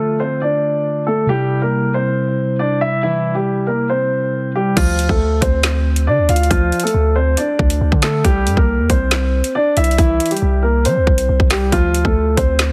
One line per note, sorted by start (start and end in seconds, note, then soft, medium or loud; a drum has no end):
0.00 1.23 D3 medium
0.00 0.19 A3 medium
0.00 1.25 A3 medium
0.00 1.26 F4 medium
0.00 0.18 A4 medium
0.20 0.40 C4 medium
0.20 0.40 C5 medium
0.42 1.04 D4 medium
0.42 1.03 D5 medium
1.07 1.27 A3 medium
1.07 1.27 A4 medium
1.26 4.71 C3 medium
1.26 4.73 G3 medium
1.26 1.60 G3 medium
1.26 1.60 G4 loud
1.32 4.74 E4 medium
1.62 1.93 A#3 medium
1.62 1.92 A#4 medium
1.94 2.56 C4 medium
1.94 2.56 C5 medium
2.59 2.79 D4 medium
2.59 2.79 D5 medium
2.81 3.01 E4 medium
2.81 3.01 E5 medium
3.03 3.34 E3 medium
3.03 3.34 E4 loud
3.35 3.66 G3 medium
3.35 3.66 G4 medium
3.67 3.88 A#3 medium
3.67 3.87 A#4 medium
3.90 4.51 C4 medium
3.90 4.51 C5 medium
4.55 4.75 G3 medium
4.55 4.75 G4 medium
4.77 5.08 D2 loud
4.77 5.08 F3 medium
4.77 5.07 F4 loud
4.77 kick loud
4.77 closed hi-hat medium
4.77 crash loud
4.99 closed hi-hat medium
5.09 5.41 D2 loud
5.09 5.41 A3 medium
5.09 5.40 A4 medium
5.09 kick medium
5.41 6.09 D2 loud
5.41 6.03 C4 medium
5.41 6.03 C5 medium
5.41 kick medium
5.41 closed hi-hat medium
5.63 snare loud
5.63 clap medium
5.63 closed hi-hat medium
5.96 closed hi-hat medium
6.07 6.19 D3 loud
6.07 6.27 D4 medium
6.07 6.27 D5 medium
6.18 6.28 D2 loud
6.29 6.50 D2 loud
6.29 6.49 F4 medium
6.29 6.49 F5 medium
6.29 closed hi-hat medium
6.36 closed hi-hat medium
6.43 closed hi-hat soft
6.50 6.71 D2 loud
6.50 6.82 F3 medium
6.50 6.81 F4 loud
6.50 kick loud
6.50 closed hi-hat medium
6.72 closed hi-hat soft
6.80 7.14 A4 medium
6.80 closed hi-hat medium
6.84 7.14 A3 medium
6.84 closed hi-hat medium
6.94 7.36 D2 loud
7.16 7.36 C4 medium
7.16 7.35 C5 medium
7.37 7.99 D4 medium
7.37 7.99 D5 medium
7.37 closed hi-hat medium
7.59 7.80 D2 loud
7.59 kick medium
7.70 closed hi-hat medium
7.81 7.91 D2 loud
7.92 8.23 D3 loud
7.92 kick medium
8.02 8.23 A3 medium
8.02 8.22 A4 medium
8.02 snare loud
8.02 clap medium
8.02 closed hi-hat medium
8.25 8.48 C2 loud
8.25 8.56 G3 medium
8.25 8.55 G4 loud
8.25 kick loud
8.25 closed hi-hat medium
8.46 8.57 G2 loud
8.46 closed hi-hat medium
8.57 8.80 C2 loud
8.57 8.88 A#3 medium
8.57 8.88 A#4 medium
8.57 kick medium
8.79 8.89 E2 medium
8.90 9.42 C2 loud
8.90 9.51 C4 medium
8.90 9.51 C5 medium
8.90 kick medium
8.90 closed hi-hat medium
9.11 snare loud
9.11 clap medium
9.11 closed hi-hat medium
9.44 closed hi-hat medium
9.55 9.75 D4 medium
9.55 9.75 D5 medium
9.77 9.98 C2 loud
9.77 9.97 E4 medium
9.77 9.97 E5 medium
9.77 closed hi-hat medium
9.84 closed hi-hat medium
9.91 closed hi-hat soft
9.98 10.19 C2 loud
9.98 10.30 E3 medium
9.98 10.29 E4 loud
9.98 kick loud
9.98 closed hi-hat medium
10.20 closed hi-hat medium
10.26 closed hi-hat medium
10.31 10.62 G3 medium
10.31 10.61 G4 medium
10.31 closed hi-hat medium
10.37 closed hi-hat soft
10.42 10.87 C2 loud
10.63 10.83 A#3 medium
10.63 10.83 A#4 medium
10.85 10.98 G3 loud
10.85 11.47 C4 medium
10.85 11.47 C5 medium
10.85 closed hi-hat medium
10.96 11.07 C2 loud
11.07 11.28 C2 loud
11.07 kick medium
11.18 closed hi-hat medium
11.29 11.39 C2 loud
11.40 11.71 C2 loud
11.40 kick medium
11.50 11.71 G3 medium
11.50 11.71 G4 medium
11.50 snare loud
11.50 clap medium
11.50 open hi-hat medium
11.72 12.04 D2 loud
11.72 12.04 F3 medium
11.72 12.03 F4 loud
11.72 kick loud
11.72 closed hi-hat medium
11.94 closed hi-hat medium
12.05 12.36 D2 loud
12.05 12.36 A3 medium
12.05 12.36 A4 medium
12.05 kick medium
12.37 12.72 D2 loud
12.37 12.72 C4 medium
12.37 12.72 C5 medium
12.37 kick medium
12.37 closed hi-hat medium
12.59 snare loud
12.59 clap medium
12.59 closed hi-hat medium